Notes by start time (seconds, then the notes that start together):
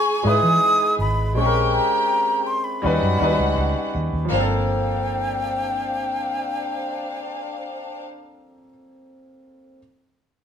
Already playing: G#3 D#4 E4 G#4 B4 G#5 C#6
0.23 G#2 G#3 D#4 E4 B4 D#6
0.43 E3
0.99 G#1 B5
1.35 A#1 G#3 C4 C#4 G4 G#4 G5 C#6
1.46 A#4
1.74 A#5
2.47 C6
2.64 B5
2.82 D#2 G3 C#4 D#4 F#4 B4 F#5
3.03 F#2
3.19 D#2 G3 C#4 D#4 B4
3.39 C#2
3.58 C#2
3.95 D#2
4.13 D#2
4.25 F3
4.30 G1 A#3 D4 C5 F5 G5
4.35 C4
4.40 A4